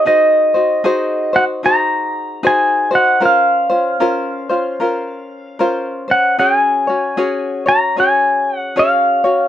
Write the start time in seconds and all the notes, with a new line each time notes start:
0.05 D#4 F#4 G#4 C5 D#5
0.54 D#4 F#4 C5
0.84 D#4 F#4 G#4 C5
1.33 D#4 F#4 C5 F#5
1.63 D#4 F#4 G#4 C5 A#5
2.43 D#4 F#4 G#4 C5 G#5
2.91 D#4 F#4 C5
2.95 F#5
3.20 C#4 F4 A#4 C5
3.25 F5
3.70 C#4 F4 C5
4.00 C#4 F4 A#4 C5
4.49 C#4 F4 C5
4.80 C#4 F4 A#4 C5
5.59 C#4 F4 A#4 C5
6.08 C#4 C5 F#5
6.39 C#4 F#4 G#4 C#5 G5
6.56 G#5
6.87 C#4 F#4 C#5
7.17 C#4 F#4 G#4 C#5
7.66 C#4 F#4 C#5 A#5
7.96 C#4 F#4 G#4 C#5 G#5
8.58 F#5
8.76 C#4 F#4 G#4 C#5 F5
9.24 C#4 F#4 C#5